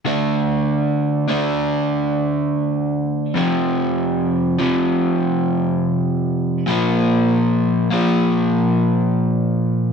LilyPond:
\new Staff \with { instrumentName = "Overdriven electric guitar" } { \clef bass \time 4/4 \key d \phrygian \tempo 4 = 72 <d a d'>4. <d a d'>2~ <d a d'>8 | <f, c f>4. <f, c f>2~ <f, c f>8 | <bes, f bes>4. <bes, f bes>2~ <bes, f bes>8 | }